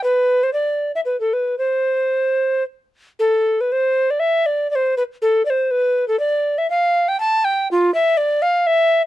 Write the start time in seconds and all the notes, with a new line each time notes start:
0.04 B4
0.43 C5
0.53 D5
0.95 E5
1.05 B4
1.20 A4
1.33 B4
1.58 C5
3.19 A4
3.61 B4
3.72 C5
4.10 D5
4.20 E5
4.46 D5
4.71 D5
4.75 C5
4.97 B4
5.22 A4
5.46 D5
5.50 C5
5.71 B4
6.08 A4
6.20 D5
6.58 E5
6.70 F5
7.08 G5
7.20 A5
7.45 G5
7.71 F4
7.94 E5
8.17 D5
8.42 F5
8.67 E5